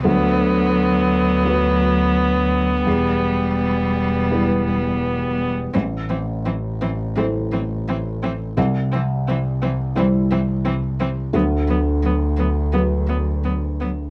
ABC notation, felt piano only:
X:1
M:4/4
L:1/8
Q:1/4=85
K:Bphr
V:1 name="Felt piano"
D,,4 [F,FB]4 | E,,4 [G,EB]4 | A,,,4 [A,Ec]4 | C,,4 [G,Ec]4 |
D,,4 [F,FB]4 |]